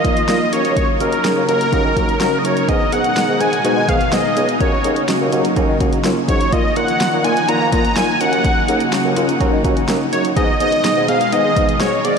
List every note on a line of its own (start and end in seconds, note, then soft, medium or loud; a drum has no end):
0.00 0.51 D#3 medium
0.00 0.51 F3 medium
0.00 2.65 A#3 medium
0.00 0.51 F4 medium
0.00 0.28 D#5 medium
0.05 0.14 A#2 medium
0.05 0.21 A#3 medium
0.05 0.21 D#4 medium
0.05 0.21 F4 medium
0.05 kick medium
0.05 closed hi-hat medium
0.17 closed hi-hat soft
0.28 0.38 A#2 medium
0.28 0.45 A#3 medium
0.28 0.45 D#4 medium
0.28 0.45 F4 medium
0.28 0.54 D#5 medium
0.28 snare loud
0.28 closed hi-hat medium
0.52 0.81 D#2 medium
0.52 2.67 C#3 medium
0.52 2.67 F#3 medium
0.52 0.91 C#4 medium
0.52 0.91 D#4 medium
0.52 6.49 D#4 medium
0.52 0.91 F#4 medium
0.52 0.76 C#5 medium
0.52 closed hi-hat medium
0.65 closed hi-hat soft
0.77 0.87 C#5 medium
0.77 kick loud
0.77 closed hi-hat medium
1.00 1.10 D#2 loud
1.00 1.17 C#4 medium
1.00 1.17 D#4 medium
1.00 1.17 F#4 medium
1.00 1.45 A#4 medium
1.00 closed hi-hat medium
1.12 closed hi-hat soft
1.24 1.41 C#4 medium
1.24 1.41 D#4 medium
1.24 1.41 G#4 medium
1.24 snare loud
1.24 closed hi-hat medium
1.37 1.46 D#2 medium
1.49 1.58 D#2 loud
1.49 1.65 C#4 medium
1.49 1.65 D#4 medium
1.49 1.65 F#4 medium
1.49 2.40 A#4 loud
1.49 closed hi-hat medium
1.61 closed hi-hat medium
1.73 1.82 D#2 loud
1.73 1.89 C#4 medium
1.73 1.89 D#4 medium
1.73 1.89 F#4 loud
1.73 kick medium
1.73 closed hi-hat medium
1.85 1.94 D#3 medium
1.97 2.06 D#2 medium
1.97 2.13 C#4 medium
1.97 2.13 D#4 medium
1.97 2.13 F#4 medium
1.97 kick medium
1.97 closed hi-hat medium
2.09 closed hi-hat soft
2.20 2.30 D#2 loud
2.20 2.37 C#4 medium
2.20 2.37 D#4 medium
2.20 2.37 F#4 medium
2.20 snare loud
2.20 closed hi-hat medium
2.39 2.46 D#5 medium
2.45 2.54 F#2 medium
2.45 2.61 C#4 medium
2.45 2.61 D#4 medium
2.45 2.61 F#4 medium
2.45 2.70 C#5 medium
2.45 closed hi-hat medium
2.57 closed hi-hat soft
2.69 2.78 G#2 loud
2.69 4.59 B2 medium
2.69 4.59 D#3 medium
2.69 4.59 G#3 medium
2.69 2.85 B3 medium
2.69 2.85 D#4 medium
2.69 2.85 G#4 loud
2.69 2.94 D#5 loud
2.69 kick loud
2.69 closed hi-hat medium
2.92 3.02 G#2 medium
2.92 3.09 B3 medium
2.92 3.09 D#4 medium
2.92 3.09 G#4 medium
2.92 3.42 F#5 loud
2.92 closed hi-hat medium
3.04 closed hi-hat soft
3.16 3.33 B3 medium
3.16 3.33 D#4 medium
3.16 3.33 G#4 medium
3.16 snare loud
3.16 closed hi-hat medium
3.29 3.38 G#2 loud
3.41 3.50 G#2 medium
3.41 3.57 B3 medium
3.41 3.57 D#4 medium
3.41 3.57 G#4 medium
3.41 3.64 G#5 loud
3.41 closed hi-hat medium
3.53 closed hi-hat soft
3.65 3.74 G#2 medium
3.65 3.81 B3 medium
3.65 3.81 D#4 medium
3.65 3.81 F#4 loud
3.65 3.90 G#5 loud
3.65 closed hi-hat medium
3.77 3.86 G#3 medium
3.89 3.98 G#2 medium
3.89 4.05 B3 medium
3.89 4.05 D#4 medium
3.89 4.05 G#4 medium
3.89 4.14 F5 loud
3.89 kick medium
3.89 closed hi-hat medium
4.01 closed hi-hat soft
4.12 4.22 G#2 medium
4.12 4.29 B3 medium
4.12 4.29 D#4 medium
4.12 4.29 G#4 medium
4.12 4.60 D#5 loud
4.12 snare loud
4.12 closed hi-hat medium
4.37 4.46 C#2 medium
4.37 4.53 B3 medium
4.37 4.53 D#4 medium
4.37 4.53 G#4 medium
4.37 closed hi-hat medium
4.49 closed hi-hat soft
4.61 4.70 D#2 medium
4.61 6.51 C#3 medium
4.61 6.51 F#3 medium
4.61 6.51 A#3 medium
4.61 4.77 C#4 medium
4.61 4.77 D#4 medium
4.61 4.77 F#4 loud
4.61 5.05 C#5 medium
4.61 kick loud
4.61 closed hi-hat medium
4.84 4.94 D#2 loud
4.84 5.01 C#4 medium
4.84 5.01 D#4 medium
4.84 5.01 G#4 medium
4.84 closed hi-hat medium
4.96 closed hi-hat soft
5.08 5.25 C#4 medium
5.08 5.25 D#4 medium
5.08 5.25 F#4 medium
5.08 snare loud
5.08 closed hi-hat medium
5.21 5.30 D#2 medium
5.32 5.42 D#2 medium
5.32 5.49 C#4 medium
5.32 5.49 D#4 medium
5.32 5.49 F#4 loud
5.32 closed hi-hat medium
5.45 closed hi-hat medium
5.56 5.66 D#2 loud
5.56 5.73 C#4 loud
5.56 5.73 D#4 loud
5.56 5.73 F#4 loud
5.56 kick medium
5.56 closed hi-hat medium
5.68 5.78 D#3 medium
5.80 5.90 D#2 medium
5.80 5.97 C#4 medium
5.80 5.97 D#4 medium
5.80 5.97 F#4 loud
5.80 kick loud
5.80 closed hi-hat medium
5.93 closed hi-hat soft
6.04 6.14 D#2 medium
6.04 6.21 C#4 medium
6.04 6.21 D#4 medium
6.04 6.21 F4 medium
6.04 snare loud
6.04 closed hi-hat medium
6.28 6.38 G#2 medium
6.28 6.45 C#4 medium
6.28 6.45 D#4 medium
6.28 6.45 F#4 medium
6.28 6.54 C#5 medium
6.28 kick medium
6.28 closed hi-hat medium
6.41 closed hi-hat soft
6.52 6.62 A#2 loud
6.52 8.19 D#3 medium
6.52 8.19 F3 medium
6.52 6.69 A#3 medium
6.52 10.33 A#3 medium
6.52 6.69 D#4 medium
6.52 8.19 D#4 medium
6.52 6.69 F4 loud
6.52 6.78 D#5 medium
6.52 kick loud
6.52 closed hi-hat medium
6.76 6.86 A#2 loud
6.76 6.93 A#3 medium
6.76 6.93 D#4 medium
6.76 6.93 F4 medium
6.76 7.24 F#5 loud
6.76 closed hi-hat medium
6.88 closed hi-hat medium
7.00 7.17 A#3 medium
7.00 7.17 D#4 medium
7.00 7.17 F4 medium
7.00 snare loud
7.00 closed hi-hat medium
7.13 7.22 A#2 medium
7.24 7.34 A#2 loud
7.24 7.41 A#3 medium
7.24 7.41 D#4 medium
7.24 7.41 F4 medium
7.24 7.50 G#5 loud
7.24 closed hi-hat medium
7.37 closed hi-hat medium
7.48 7.58 A#2 loud
7.48 7.65 A#3 medium
7.48 7.65 D#4 medium
7.48 7.65 F4 loud
7.48 7.72 A#5 loud
7.48 closed hi-hat medium
7.61 7.70 A#3 loud
7.72 7.82 A#2 medium
7.72 7.89 A#3 medium
7.72 7.89 D#4 medium
7.72 7.89 F4 medium
7.72 7.98 A#5 loud
7.72 kick medium
7.72 closed hi-hat medium
7.85 closed hi-hat soft
7.96 8.06 A#2 medium
7.96 8.13 A#3 medium
7.96 8.13 D#4 medium
7.96 8.13 F4 medium
7.96 8.22 G#5 loud
7.96 snare loud
7.96 closed hi-hat medium
8.21 8.49 D#2 medium
8.21 10.34 C#3 medium
8.21 10.34 F#3 medium
8.21 8.59 C#4 medium
8.21 8.59 D#4 medium
8.21 12.19 D#4 medium
8.21 8.59 F#4 medium
8.21 9.17 F#5 loud
8.21 closed hi-hat medium
8.33 closed hi-hat soft
8.45 kick loud
8.45 closed hi-hat medium
8.68 8.78 D#2 loud
8.68 8.85 C#4 medium
8.68 8.85 D#4 medium
8.68 8.85 G#4 medium
8.68 closed hi-hat medium
8.80 closed hi-hat soft
8.92 9.09 C#4 medium
8.92 9.09 D#4 medium
8.92 9.09 F#4 loud
8.92 snare loud
8.92 closed hi-hat medium
9.05 9.14 D#2 medium
9.16 9.26 D#2 loud
9.16 9.33 C#4 medium
9.16 9.33 D#4 medium
9.16 9.33 F4 medium
9.16 closed hi-hat medium
9.29 closed hi-hat medium
9.40 9.50 D#2 loud
9.40 9.57 C#4 loud
9.40 9.57 D#4 loud
9.40 9.57 F#4 loud
9.40 kick medium
9.40 closed hi-hat medium
9.53 9.62 D#3 medium
9.64 9.74 D#2 medium
9.64 9.81 C#4 medium
9.64 9.81 D#4 medium
9.64 9.81 F#4 loud
9.64 kick medium
9.64 closed hi-hat medium
9.77 closed hi-hat soft
9.88 9.98 D#2 loud
9.88 10.05 C#4 medium
9.88 10.05 D#4 medium
9.88 10.05 F#4 loud
9.88 snare loud
9.88 closed hi-hat medium
10.13 10.22 F#2 medium
10.13 10.29 C#4 medium
10.13 10.29 D#4 medium
10.13 10.29 F#4 medium
10.13 10.23 C#5 medium
10.13 closed hi-hat medium
10.25 closed hi-hat soft
10.36 10.46 G#2 loud
10.36 12.19 B2 medium
10.36 12.19 D#3 medium
10.36 12.19 G#3 medium
10.36 10.53 B3 medium
10.36 10.53 D#4 medium
10.36 10.53 G#4 loud
10.36 10.59 D#5 loud
10.36 kick loud
10.36 closed hi-hat medium
10.60 10.70 G#2 loud
10.60 10.77 B3 medium
10.60 10.77 D#4 medium
10.60 10.77 G#4 medium
10.60 11.05 D#5 loud
10.60 closed hi-hat medium
10.72 closed hi-hat soft
10.84 11.01 B3 medium
10.84 11.01 D#4 medium
10.84 11.01 G#4 medium
10.84 snare loud
10.84 closed hi-hat medium
10.96 11.06 G#2 medium
11.08 11.18 G#2 loud
11.08 11.25 B3 medium
11.08 11.25 D#4 medium
11.08 11.25 G#4 medium
11.08 11.31 F5 loud
11.08 closed hi-hat medium
11.21 closed hi-hat medium
11.32 11.42 G#2 loud
11.32 11.49 B3 medium
11.32 11.49 D#4 medium
11.32 11.49 G#4 loud
11.32 11.77 D#5 loud
11.32 closed hi-hat medium
11.44 11.54 G#3 medium
11.56 11.66 G#2 medium
11.56 11.73 B3 medium
11.56 11.73 D#4 medium
11.56 11.73 G#4 medium
11.56 kick loud
11.56 closed hi-hat medium
11.69 closed hi-hat soft
11.80 11.90 G#2 medium
11.80 11.97 B3 medium
11.80 11.97 D#4 medium
11.80 11.97 G#4 medium
11.80 12.06 C#5 medium
11.80 snare loud
11.80 closed hi-hat medium
12.04 12.14 G#2 medium
12.04 12.19 B3 medium
12.04 12.19 D#4 medium
12.04 12.19 G#4 medium
12.04 12.19 D5 loud
12.04 closed hi-hat medium